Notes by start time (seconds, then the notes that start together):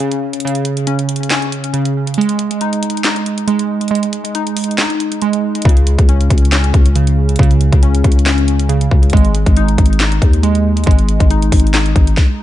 Already playing: C#4
0.00 C#3, closed hi-hat
0.12 closed hi-hat
0.33 closed hi-hat
0.40 closed hi-hat
0.45 C#3, closed hi-hat
0.55 closed hi-hat
0.65 closed hi-hat
0.77 closed hi-hat
0.87 C#4, closed hi-hat
0.99 closed hi-hat
1.09 closed hi-hat
1.16 closed hi-hat
1.23 closed hi-hat
1.30 C#4, snare, clap, closed hi-hat
1.42 closed hi-hat
1.52 closed hi-hat
1.64 closed hi-hat
1.74 C#3, closed hi-hat
1.85 closed hi-hat
2.07 closed hi-hat
2.14 G#3, closed hi-hat
2.21 closed hi-hat
2.29 closed hi-hat
2.39 closed hi-hat
2.51 closed hi-hat
2.61 D#4, closed hi-hat
2.73 closed hi-hat
2.83 closed hi-hat
2.90 closed hi-hat
2.97 closed hi-hat
3.04 D#4, snare, clap, closed hi-hat
3.16 closed hi-hat
3.26 closed hi-hat
3.38 closed hi-hat
3.48 G#3, closed hi-hat
3.59 closed hi-hat
3.81 closed hi-hat
3.88 G#3, closed hi-hat
3.95 closed hi-hat
4.03 closed hi-hat
4.13 closed hi-hat
4.25 closed hi-hat
4.35 D#4, closed hi-hat
4.47 closed hi-hat
4.57 closed hi-hat, open hi-hat
4.64 closed hi-hat
4.71 closed hi-hat
4.78 D#4, snare, clap, closed hi-hat
4.90 closed hi-hat
5.00 closed hi-hat
5.12 closed hi-hat
5.22 G#3, closed hi-hat
5.33 closed hi-hat
5.55 closed hi-hat
5.62 C#2 C#3, kick, closed hi-hat
5.69 closed hi-hat
5.77 closed hi-hat
5.87 closed hi-hat
5.99 C#2, kick, closed hi-hat
6.09 C#4, closed hi-hat
6.21 closed hi-hat
6.30 C#2, kick, closed hi-hat
6.38 closed hi-hat
6.45 closed hi-hat
6.52 C#4, snare, clap, closed hi-hat
6.64 closed hi-hat
6.74 C#2, kick, closed hi-hat
6.86 closed hi-hat
6.96 C#3, closed hi-hat
7.07 closed hi-hat
7.29 closed hi-hat
7.36 C#2, kick, closed hi-hat
7.40 C#3, closed hi-hat
7.51 closed hi-hat
7.61 closed hi-hat
7.73 C#2, kick, closed hi-hat
7.83 C#4, closed hi-hat
7.95 closed hi-hat
8.04 C#2, kick, closed hi-hat
8.12 closed hi-hat
8.19 closed hi-hat
8.26 C#4, snare, clap, closed hi-hat
8.38 closed hi-hat
8.48 closed hi-hat
8.59 closed hi-hat
8.69 C#3, closed hi-hat
8.81 closed hi-hat
8.91 C#2, kick
9.03 closed hi-hat
9.10 G#1 G#3, kick, closed hi-hat
9.17 closed hi-hat
9.25 closed hi-hat
9.35 closed hi-hat
9.46 G#1, kick, closed hi-hat
9.57 D#4, closed hi-hat
9.68 closed hi-hat
9.78 G#1, kick, closed hi-hat
9.86 closed hi-hat
9.93 closed hi-hat
10.00 D#4, snare, clap, closed hi-hat
10.12 closed hi-hat
10.22 D#2, kick, closed hi-hat
10.33 closed hi-hat
10.43 G#3, closed hi-hat
10.55 closed hi-hat
10.77 closed hi-hat
10.84 G#1 G#3, kick, closed hi-hat
10.91 closed hi-hat
10.99 closed hi-hat
11.09 closed hi-hat
11.20 G#1, kick, closed hi-hat
11.31 D#4, closed hi-hat
11.42 closed hi-hat
11.52 G#1, kick, closed hi-hat, open hi-hat
11.60 closed hi-hat
11.67 closed hi-hat
11.74 D#4, snare, clap, closed hi-hat
11.86 closed hi-hat
11.96 G#1, kick, closed hi-hat
12.07 closed hi-hat
12.17 kick, snare